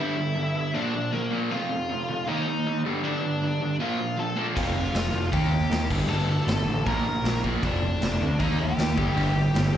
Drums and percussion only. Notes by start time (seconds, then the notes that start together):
4.57 kick, crash
4.95 snare, open hi-hat
5.33 kick, open hi-hat
5.72 snare, open hi-hat
5.91 kick, crash
6.48 snare, open hi-hat
6.87 kick, open hi-hat
7.25 snare, open hi-hat
7.44 kick
7.63 kick, open hi-hat
8.02 snare, open hi-hat
8.40 kick, open hi-hat
8.79 snare, open hi-hat
8.98 kick
9.17 open hi-hat
9.55 snare, open hi-hat